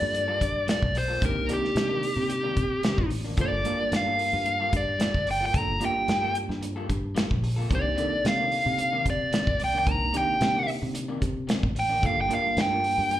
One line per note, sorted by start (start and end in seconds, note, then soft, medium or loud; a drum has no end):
0.00 0.39 G2 medium
0.00 0.25 A#3 medium
0.00 0.26 D4 medium
0.00 0.26 F4 medium
0.00 0.26 A4 medium
0.00 0.67 D5 medium
0.00 muted clean electric guitar stroke soft
0.13 muted clean electric guitar stroke soft
0.13 closed hi-hat medium
0.28 0.39 G3 medium
0.28 0.40 A#3 medium
0.28 0.40 F4 medium
0.28 0.41 A4 medium
0.40 0.67 G2 medium
0.40 muted clean electric guitar stroke soft
0.40 kick medium
0.40 closed hi-hat medium
0.67 0.82 G3 medium
0.67 0.82 A#3 medium
0.67 0.81 F4 medium
0.67 0.81 A4 medium
0.67 snare loud
0.67 closed hi-hat medium
0.71 0.96 D5 medium
0.82 1.20 B1 medium
0.82 muted clean electric guitar stroke soft
0.82 kick medium
0.95 1.23 C5 medium
0.95 muted clean electric guitar stroke soft
0.95 open hi-hat medium
1.08 1.21 A#3 soft
1.08 1.22 F4 soft
1.08 1.21 A4 medium
1.21 1.48 C2 medium
1.21 1.36 C3 medium
1.21 1.36 D#3 medium
1.21 1.45 A#3 medium
1.21 1.35 A#3 medium
1.21 1.45 D4 medium
1.21 1.35 D4 medium
1.21 1.46 D#4 medium
1.21 1.46 G4 medium
1.21 kick loud
1.21 closed hi-hat medium
1.25 1.50 A#4 medium
1.36 muted clean electric guitar stroke soft
1.48 1.63 C3 medium
1.48 1.63 D#3 medium
1.48 2.41 A#3 medium
1.48 1.62 A#3 medium
1.48 2.42 D4 medium
1.48 1.61 D4 medium
1.48 2.42 D#4 medium
1.48 2.42 G4 medium
1.48 closed hi-hat medium
1.53 3.09 G4 medium
1.63 muted clean electric guitar stroke soft
1.63 snare soft
1.75 2.15 C3 medium
1.75 snare loud
1.75 closed hi-hat medium
1.89 2.02 D#3 soft
1.89 2.02 A#3 soft
1.89 2.02 D4 soft
2.02 muted clean electric guitar stroke soft
2.02 open hi-hat medium
2.17 2.55 C3 medium
2.17 muted clean electric guitar stroke soft
2.29 muted clean electric guitar stroke soft
2.29 closed hi-hat medium
2.43 2.55 C3 medium
2.43 2.56 D#3 medium
2.43 2.56 A#3 medium
2.43 2.56 D4 medium
2.56 2.83 C3 medium
2.56 muted clean electric guitar stroke soft
2.56 kick medium
2.56 closed hi-hat medium
2.83 2.98 C3 medium
2.83 2.98 D#3 medium
2.83 2.98 A#3 medium
2.83 2.97 D4 medium
2.83 snare loud
2.83 closed hi-hat medium
2.98 3.36 A1 medium
2.98 muted clean electric guitar stroke soft
2.98 kick medium
3.10 muted clean electric guitar stroke soft
3.10 open hi-hat medium
3.25 3.37 D#3 soft
3.25 3.37 A#3 soft
3.25 3.38 D4 medium
3.37 3.63 G1 medium
3.37 3.52 G3 medium
3.37 3.61 A#3 medium
3.37 3.52 A#3 medium
3.37 3.61 D4 medium
3.37 3.61 F4 medium
3.37 3.52 F4 medium
3.37 3.51 A4 medium
3.37 3.62 A4 medium
3.37 kick loud
3.37 closed hi-hat medium
3.41 3.92 D5 medium
3.52 muted clean electric guitar stroke soft
3.64 3.79 G3 medium
3.64 4.57 A#3 medium
3.64 3.79 A#3 medium
3.64 4.58 D4 medium
3.64 4.58 F4 medium
3.64 3.79 F4 medium
3.64 3.78 A4 medium
3.64 4.58 A#4 medium
3.64 closed hi-hat medium
3.80 muted clean electric guitar stroke soft
3.92 4.31 G2 medium
3.92 snare medium
3.92 closed hi-hat medium
3.96 4.73 F5 medium
4.06 4.19 A#3 soft
4.06 4.19 F4 medium
4.06 4.19 A4 soft
4.19 muted clean electric guitar stroke soft
4.19 open hi-hat medium
4.33 4.71 G2 medium
4.33 muted clean electric guitar stroke soft
4.46 muted clean electric guitar stroke soft
4.46 closed hi-hat medium
4.60 4.71 G3 medium
4.60 4.72 A#3 medium
4.60 4.72 F4 medium
4.60 4.73 A4 medium
4.72 4.99 G2 medium
4.72 muted clean electric guitar stroke soft
4.72 kick medium
4.72 closed hi-hat medium
4.77 5.27 D5 medium
4.99 5.14 G3 medium
4.99 5.14 A#3 medium
4.99 5.13 F4 medium
4.99 5.12 A4 medium
4.99 snare medium
4.99 closed hi-hat medium
5.14 5.52 G1 medium
5.14 muted clean electric guitar stroke soft
5.14 kick medium
5.26 muted clean electric guitar stroke soft
5.26 open hi-hat medium
5.31 5.43 G5 medium
5.41 5.58 A#3 soft
5.41 5.57 F4 soft
5.41 5.57 A4 medium
5.46 5.57 G5 medium
5.53 5.80 G1 medium
5.53 5.77 A#3 medium
5.53 5.78 D4 medium
5.53 5.78 F4 medium
5.53 5.78 A4 medium
5.53 5.82 A#5 medium
5.53 kick loud
5.53 closed hi-hat medium
5.68 muted clean electric guitar stroke soft
5.80 5.95 G3 medium
5.80 6.74 A#3 medium
5.80 5.95 A#3 medium
5.80 6.74 D4 medium
5.80 6.74 F4 medium
5.80 5.95 F4 medium
5.80 6.74 G4 medium
5.80 5.94 A4 medium
5.80 closed hi-hat medium
5.85 6.36 G5 medium
5.95 muted clean electric guitar stroke soft
6.08 6.47 G2 medium
6.08 snare medium
6.08 closed hi-hat medium
6.22 6.34 A#3 soft
6.22 6.35 F4 soft
6.22 6.35 A4 medium
6.35 muted clean electric guitar stroke soft
6.35 closed hi-hat medium
6.49 6.87 G2 medium
6.49 muted clean electric guitar stroke soft
6.49 snare soft
6.61 muted clean electric guitar stroke soft
6.61 closed hi-hat medium
6.76 6.87 G3 medium
6.76 6.87 A#3 medium
6.76 6.88 F4 medium
6.76 6.88 A4 medium
6.88 7.15 G2 medium
6.88 muted clean electric guitar stroke soft
6.88 kick medium
6.88 closed hi-hat medium
7.15 7.30 G3 medium
7.15 7.30 A#3 medium
7.15 7.29 F4 medium
7.15 7.29 A4 medium
7.15 snare loud
7.15 closed hi-hat medium
7.30 7.68 A#1 medium
7.30 muted clean electric guitar stroke soft
7.30 kick medium
7.43 muted clean electric guitar stroke soft
7.43 open hi-hat medium
7.56 7.69 A#3 soft
7.56 7.70 F4 soft
7.56 7.70 A4 soft
7.69 7.96 C2 medium
7.69 7.84 C3 medium
7.69 7.84 D#3 medium
7.69 7.84 A#3 medium
7.69 7.94 A#3 medium
7.69 7.83 D4 medium
7.69 7.94 D4 medium
7.69 7.94 D#4 medium
7.69 7.95 G4 medium
7.69 kick loud
7.69 closed hi-hat medium
7.75 8.25 D5 medium
7.84 muted clean electric guitar stroke soft
7.96 8.11 C3 medium
7.96 8.11 D#3 medium
7.96 8.90 A#3 medium
7.96 8.10 A#3 medium
7.96 8.90 D4 medium
7.96 8.09 D4 medium
7.96 8.90 D#4 medium
7.96 8.91 A4 medium
7.96 closed hi-hat medium
8.11 muted clean electric guitar stroke soft
8.24 8.64 C3 medium
8.24 9.05 F5 medium
8.24 snare loud
8.24 closed hi-hat medium
8.38 8.50 D#3 soft
8.38 8.51 A#3 soft
8.38 8.51 D4 soft
8.51 muted clean electric guitar stroke soft
8.51 open hi-hat medium
8.65 9.04 C3 medium
8.65 muted clean electric guitar stroke soft
8.78 muted clean electric guitar stroke soft
8.78 closed hi-hat medium
8.92 9.04 C3 soft
8.92 9.04 D#3 medium
8.92 9.04 A#3 medium
8.92 9.05 D4 medium
9.05 9.31 C3 medium
9.05 muted clean electric guitar stroke soft
9.05 kick medium
9.05 closed hi-hat medium
9.10 9.60 D5 medium
9.32 9.47 C3 medium
9.32 9.46 D#3 medium
9.32 9.46 A#3 medium
9.32 9.45 D4 medium
9.32 snare medium
9.32 closed hi-hat medium
9.46 9.85 C2 medium
9.46 muted clean electric guitar stroke soft
9.46 kick medium
9.59 muted clean electric guitar stroke soft
9.59 open hi-hat medium
9.64 9.76 G5 medium
9.73 9.90 D#3 soft
9.73 9.90 A#3 soft
9.73 9.89 D4 medium
9.79 9.91 G5 medium
9.86 10.12 C2 medium
9.86 10.10 A#3 medium
9.86 10.10 D4 medium
9.86 10.10 D#4 medium
9.86 10.10 A#4 medium
9.86 kick loud
9.86 closed hi-hat medium
9.91 10.15 A#5 medium
10.00 muted clean electric guitar stroke soft
10.13 10.28 C3 medium
10.13 10.28 D#3 medium
10.13 11.06 A#3 medium
10.13 10.27 A#3 medium
10.13 11.06 D4 medium
10.13 10.26 D4 medium
10.13 11.07 D#4 medium
10.13 11.07 G4 medium
10.13 closed hi-hat medium
10.18 10.68 G5 medium
10.28 muted clean electric guitar stroke soft
10.41 10.80 C3 medium
10.41 snare loud
10.41 closed hi-hat medium
10.54 10.67 D#3 soft
10.54 10.67 A#3 medium
10.54 10.67 D4 medium
10.67 muted clean electric guitar stroke soft
10.67 open hi-hat medium
10.82 11.20 C3 medium
10.82 muted clean electric guitar stroke soft
10.94 muted clean electric guitar stroke soft
10.94 closed hi-hat medium
11.08 11.20 C3 medium
11.08 11.20 D#3 medium
11.08 11.21 A#3 medium
11.08 11.21 D4 medium
11.21 11.47 C3 medium
11.21 muted clean electric guitar stroke soft
11.21 kick medium
11.21 closed hi-hat medium
11.47 11.63 C3 medium
11.47 11.63 D#3 medium
11.47 11.62 A#3 medium
11.47 11.61 D4 medium
11.47 snare loud
11.47 closed hi-hat medium
11.63 12.01 A1 medium
11.63 muted clean electric guitar stroke soft
11.63 kick medium
11.75 muted clean electric guitar stroke soft
11.75 open hi-hat medium
11.79 12.04 G5 medium
11.89 12.02 D#3 soft
11.89 12.02 A#3 soft
11.89 12.03 D4 medium
12.02 12.29 G1 medium
12.02 12.17 G3 medium
12.02 12.26 A#3 medium
12.02 12.17 A#3 medium
12.02 12.26 D4 medium
12.02 12.27 F4 medium
12.02 12.16 F4 medium
12.02 12.27 A4 medium
12.02 12.16 A4 medium
12.02 kick medium
12.02 closed hi-hat medium
12.06 12.19 F5 medium
12.17 muted clean electric guitar stroke soft
12.21 12.32 G5 medium
12.29 12.44 G3 medium
12.29 12.43 A#3 medium
12.29 13.20 A#3 medium
12.29 13.20 D4 medium
12.29 12.43 F4 medium
12.29 13.20 F4 medium
12.29 12.42 A4 medium
12.29 13.20 A#4 medium
12.29 closed hi-hat medium
12.34 12.59 F5 medium
12.43 muted clean electric guitar stroke soft
12.57 12.96 G2 medium
12.57 snare loud
12.57 closed hi-hat medium
12.61 13.20 G5 medium
12.70 12.83 A#3 soft
12.70 12.83 F4 soft
12.70 12.84 A4 soft
12.83 muted clean electric guitar stroke soft
12.83 open hi-hat medium
12.98 13.20 G2 medium
12.98 muted clean electric guitar stroke soft
13.11 muted clean electric guitar stroke soft
13.11 closed hi-hat medium